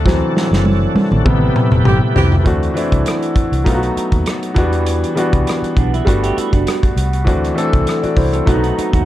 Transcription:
Already playing: D2 C3 D3 A3 F#4 A4
0.05 E3 F#3 C4, kick, snare
0.37 snare
0.51 F#1, snare
0.65 high tom
0.95 muted fingered electric bass stroke, high tom
1.11 A1, mid tom
1.25 A1 C3 E3 G3 B3 G4 B4, kick, mid tom
1.56 mid tom
1.71 E1, mid tom
1.85 G1 E3 C4 G4, mid tom
2.15 C2 E3 C4 G4, floor tom
2.32 floor tom
2.44 D2 E3 A3 C4 D4 F#4, kick, closed hi-hat
2.63 closed hi-hat
2.74 E3 A3 C4 D4 E4, closed hi-hat
2.92 C2, kick, closed hi-hat
3.06 cross-stick, closed hi-hat
3.22 closed hi-hat
3.36 muted fingered electric bass stroke, kick, closed hi-hat
3.52 C2, closed hi-hat
3.64 B1 F#3 A3 B3 D#4 F4, kick, closed hi-hat
3.74 F#4
3.83 closed hi-hat
3.96 muted fingered electric bass stroke, closed hi-hat
4.12 D#2, kick, closed hi-hat
4.26 cross-stick, closed hi-hat
4.43 closed hi-hat
4.54 E2 E3 F#3 B3 D4 F#4, kick, closed hi-hat
4.62 G3
4.73 closed hi-hat
4.86 closed hi-hat
5.04 closed hi-hat
5.15 E3 G3 B3 D4 F#4, closed hi-hat
5.33 C2, kick, closed hi-hat
5.47 cross-stick, closed hi-hat
5.62 muted fingered electric bass stroke, closed hi-hat
5.77 B1 B3 D4, kick, closed hi-hat
5.94 E4, closed hi-hat
6.05 G1 G3 A3 B3 D4 F#4, kick, closed hi-hat
6.23 E4 G4, closed hi-hat
6.36 E4, muted fingered electric bass stroke, closed hi-hat
6.53 F#1 D4 F#4, kick, closed hi-hat
6.67 cross-stick, closed hi-hat
6.83 kick, closed hi-hat
6.96 C2, closed hi-hat
7.13 closed hi-hat
7.24 D2 E3 A3 C4 D4 F#4, kick, closed hi-hat
7.44 cross-stick, closed hi-hat
7.54 E3 A3 C4 D4 A4, closed hi-hat
7.73 C2, kick, closed hi-hat
7.87 cross-stick, closed hi-hat
8.03 F#4 D5, muted fingered electric bass stroke, closed hi-hat
8.16 C2 E4 C5, kick, open hi-hat
8.33 C4 A4, closed hi-hat
8.45 B1 F#3 A3 B3 D4 D#4 F#4, kick, closed hi-hat
8.54 D#4
8.63 B3, closed hi-hat
8.77 B3 D#4, muted fingered electric bass stroke, closed hi-hat
8.93 D#2 D#4 F#4, kick, closed hi-hat

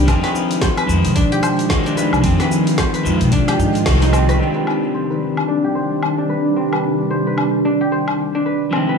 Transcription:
Already playing: D4 G4 B4
0.06 F2 D#3 F3 G#3 C4 D#4 G#4, kick, open hi-hat, low woodblock, shaker
0.24 B4, snare, open hi-hat
0.36 shaker
0.51 open hi-hat, shaker
0.61 C5, kick, snare, open hi-hat, shaker
0.78 B4, open hi-hat, low woodblock, shaker
0.87 F2 D#3 F3 C5, shaker
0.91 G#3
1.05 B2, open hi-hat, shaker
1.16 D4, kick, open hi-hat, shaker
1.32 G4, shaker
1.43 C5, low woodblock, shaker
1.59 open hi-hat, shaker
1.69 D#3 F3 G#3 C5, kick, snare, open hi-hat, shaker
1.86 D4, shaker
1.97 B4, shaker
2.13 C2, low woodblock, shaker
2.22 F2 D#3 F3 C4 F4, kick, open hi-hat, shaker
2.26 G#4
2.40 B4, snare, open hi-hat, shaker
2.52 shaker
2.67 open hi-hat, shaker
2.78 C5, kick, snare, open hi-hat, low woodblock, shaker
2.94 B4, open hi-hat, shaker
3.03 F2 D#3 F3 G#3 C5, shaker
3.21 B2, open hi-hat, shaker
3.32 D4, kick, open hi-hat, shaker
3.48 G4, snare, open hi-hat, low woodblock, shaker
3.59 G#2 D#4, shaker
3.75 open hi-hat, shaker
3.85 C2 D#3 F3 G#3 C5, kick, snare, open hi-hat, shaker
4.02 D#4, open hi-hat, shaker
4.13 C4, cross-stick, low woodblock, shaker
4.29 B4, cross-stick, open hi-hat, shaker
4.38 C3 D#3 G3 C4 D4
4.42 G4
4.56 B4
4.67 low woodblock
4.94 C5
5.10 B4
5.37 low woodblock
5.48 D4
5.64 G4
5.75 C5
6.03 low woodblock
6.18 D4
6.29 B4
6.56 C4
6.73 B4, low woodblock
7.10 C5
7.27 B4
7.38 low woodblock
7.65 D4
7.81 G4
7.92 C5
8.08 low woodblock
8.35 D4
8.46 B4
8.71 C3 D#3 F3 G#3 C4, low woodblock
8.89 B4

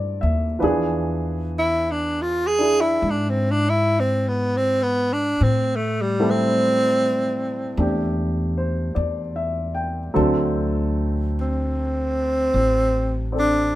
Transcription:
Already playing: G2 F3 G3 A3 D4 E4 F4 G4 A4 C5 D5
0.21 D#2 E5
0.59 E2 E3 F3 D4 B4
0.64 G#4
1.59 E4
1.91 D4
2.22 F4
2.47 G#4
2.59 D4 E4 G#4
2.81 E4
3.02 G#2
3.10 D4
3.30 C4
3.51 D4
3.69 E4
4.00 C4
4.28 B3
4.57 C4
4.83 B3
5.13 D4
5.41 A2 C4
5.76 A3
6.02 G3
6.20 G3 A3 C4 E4 A4
6.30 C4
7.77 E2 A3 D4 G4
8.58 C5
8.95 E2 D5
9.36 E5
9.74 G5
10.14 D2 D3 F#3 A3 C4 A4
11.41 C4
12.54 A1
13.32 C4 A4 D5
13.39 D4

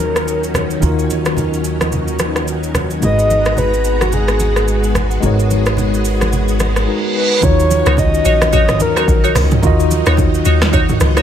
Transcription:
Already playing: D#2 D#3 F#3 C#4 D#4 F4 F#4 A#4 C#5
0.00 high conga
0.16 cross-stick, shaker
0.28 shaker
0.44 shaker
0.54 cross-stick, high conga, low conga, shaker
0.70 shaker
0.80 D#2 D#3 D#4 F4, low conga, shaker
0.84 F#4 A#4
0.99 shaker
1.10 high conga, shaker
1.25 cross-stick, shaker
1.37 low conga, shaker
1.54 shaker
1.64 shaker
1.81 cross-stick, high conga, shaker
1.92 low conga, shaker
2.08 shaker
2.19 cross-stick, high conga, shaker
2.36 cross-stick, shaker
2.48 shaker
2.63 shaker
2.75 cross-stick, high conga, low conga, shaker
2.90 shaker
3.00 G#1 G#3 B3 D#4 F#4 D#5 A#5, low conga, shaker
3.05 G#4 B4
3.19 shaker
3.30 high conga, shaker
3.45 cross-stick, shaker
3.57 B4, low conga, shaker
3.74 shaker
3.84 shaker
4.01 F#4, cross-stick, high conga, shaker
4.12 G#4, low conga, shaker
4.28 cross-stick, shaker
4.40 high conga, shaker
4.56 cross-stick, shaker
4.68 shaker
4.84 shaker
4.95 cross-stick, high conga, low conga, shaker
5.11 shaker
5.20 G#1 G#3 D#4 F#4 G#4, low conga, shaker
5.25 A#4 C#5
5.39 shaker
5.51 high conga, shaker
5.66 cross-stick, shaker
5.77 low conga, shaker
5.94 shaker
6.05 shaker
6.21 cross-stick, high conga, shaker
6.33 reverse cymbal, low conga, shaker
6.48 shaker
6.60 cross-stick, high conga, shaker
6.76 cross-stick, shaker
6.87 G#3 D#4 F#4 A#4 B4
7.16 B4
7.40 D#2 D#3 F#3 C#4 D#4 F4 C#5, kick, low conga, shaker
7.45 F#4 C#5
7.60 shaker
7.71 high conga, shaker
7.86 C#2 D#4 F#4 C#5, cross-stick, shaker
7.97 D#5, kick, low conga, shaker
8.14 shaker
8.25 A#1 D#4 F#4 C#5, shaker
8.42 cross-stick, high conga, shaker
8.53 D#4 F#4 C#5 D#5, kick, low conga, shaker
8.69 cross-stick, mid tom, shaker
8.80 D#2 A#4, high conga, shaker
8.96 D#4 F#4 C#5, cross-stick, shaker
9.08 A#1, kick, shaker
9.24 D#4 F#4 C#5, shaker
9.35 C#2, cross-stick, open hi-hat, high conga, low conga, shaker
9.51 mid tom, shaker
9.61 D#2 D#3 D#4 F4, kick, low conga, shaker
9.65 F#4 D#5
9.80 shaker
9.91 high conga, shaker
10.06 D#2 D#4 F#4 C#5, cross-stick, shaker
10.17 kick, low conga, shaker
10.34 shaker
10.45 D#2 D#4 F#4 C#5, shaker
10.62 cross-stick, snare, high conga, shaker
10.73 D#4 F#4 C#5, kick, low conga, shaker
10.89 mid tom, shaker
11.00 C#2, cross-stick, high conga, shaker
11.17 D#4 F#4 C#5, cross-stick, shaker

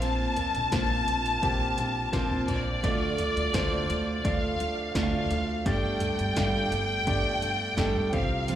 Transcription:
Already playing: A#1 A#2 A#3 C4 F4 C5
0.01 A#3 C4 F4 A#4 A5, closed hi-hat
0.36 C4 F4 A#4, closed hi-hat, floor tom
0.55 A#1, closed hi-hat
0.71 A#1 A#3 C4 F4 A#4 C5, kick, snare, closed hi-hat
1.06 A#1 C4 F4 A#4, closed hi-hat
1.26 closed hi-hat
1.42 A#1 A#3 C4 F4 G4 A#4, kick, closed hi-hat
1.77 A#1 C4 F4 A#4, closed hi-hat
2.12 A#1 A#3 C4 F4 A#4 C5, kick, snare, closed hi-hat
2.31 floor tom
2.47 A#1 C4 F4 A#4 D5, closed hi-hat, floor tom
2.83 D2 D3 A3 D4 F4 A4 D5, kick, closed hi-hat
3.18 D4 F4 A4, closed hi-hat, floor tom
3.36 D2, closed hi-hat
3.53 D2 D3 A3 D4 F4 A4 C5, kick, snare, closed hi-hat
3.89 D2 D4 F4 A4, closed hi-hat
4.24 D2 A3 D4 F4 A4 D5 F5, kick, closed hi-hat
4.59 D2 D4 F4 A4, closed hi-hat
4.95 D2 D3 A3 D4 F4 A4 D5 F5, kick, snare, closed hi-hat
5.03 F5
5.13 floor tom
5.30 D2 D4 F4 A4, closed hi-hat
5.65 G1 G2 G3 A3 D4 G4 A4 D5 G5, kick, closed hi-hat
6.00 D4 G4 A4, closed hi-hat, floor tom
6.18 G1, closed hi-hat
6.36 G1 G3 A3 D4 G4 A4 F5, kick, snare, closed hi-hat
6.71 G1 D4 G4 A4, closed hi-hat
7.06 G1 G3 A3 D4 G4 A4 D5, kick, closed hi-hat
7.41 G1 D4 G4 A4, closed hi-hat
7.77 G1 G3 A3 D4 G4 A4, kick, snare, closed hi-hat
7.95 floor tom
8.12 C2 C3 G3 C4 F4 G4 C5 F5, kick, closed hi-hat
8.48 C3 F3 G3 C4 F4 C5, closed hi-hat

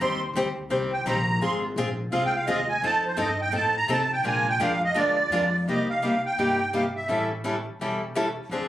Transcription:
0.00 D#2 D#3 G3 C4 G4 C5 C6
0.34 D2 D#3 G3 C4 G4 C5
0.70 C2 D#3 G3 C4 G4 C5
0.93 G5
1.06 A#1 D#3 G3 C4 G4 C5 A#5
1.40 G#1 G#3 C4 F4 G#4 C6
1.76 A#1 G#3 C4 F4 G#4
2.12 C2 G#3 C4 F4 G#4 F5
2.25 G5
2.36 F5
2.47 D#2 G#3 C4 F4 G#4 D#5
2.68 G#5
2.82 F2 F3 C4 D#4 A4 A5
3.06 C5
3.17 G2 F3 C4 D#4 A4
3.21 D#5
3.42 G5
3.52 A2 F3 C4 D#4 A4 A5
3.77 A#5
3.88 C3 F3 C4 D#4 A4 A5
4.13 G5
4.24 A#2 F3 G#3 D4 F4 A#4 G#5
4.49 G5
4.59 F2 F3 G#3 D4 F4 A#4 F5
4.84 D#5
4.94 D2 F3 G#3 D4 F4 A#4 D5
5.30 F2 F3 G#3 D4 F4 A#4
5.66 C2 C3 G3 A#3 D#4 G4 D#5
5.90 F5
6.02 C3 G3 A#3 D#4 G4
6.26 G5
6.38 G2 C3 G3 A#3 D#4 G4
6.73 C3 G3 A#3 D#4 G4 F5
6.96 E5
7.08 A1 E3 G3 C#4 E4 A4
7.44 E3 G3 C#4 E4 A4
7.79 E1 E3 G3 C#4 E4 A4
8.15 E3 G3 C#4 E4 A4
8.49 D2 D3 F3 C4 D4 G#4

